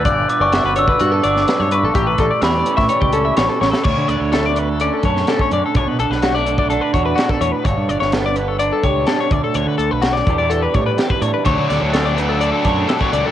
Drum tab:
CC |----------------|----------------|x---------------|----------------|
HH |x-x-x-x-x-x-x-x-|x-x-x-x-x-x-x---|--x-x-x-x-x-x-x-|x-x-x-x-x-x-x-x-|
SD |----o------oo---|----o--o----o-oo|----o------oo---|---oo-------o---|
BD |o------o--------|o-o----o-o------|o---------o--o--|o------o--o--o--|

CC |----------------|----------------|----------------|
HH |x-x-x-x-x-x-x-x-|x-x-x-x-x-x-x-x-|x-x-x-x-x-x-x-x-|
SD |---oo-------o---|----oo------o---|--o-o-------o---|
BD |o---------o---o-|------o---o--o--|o---------o--o--|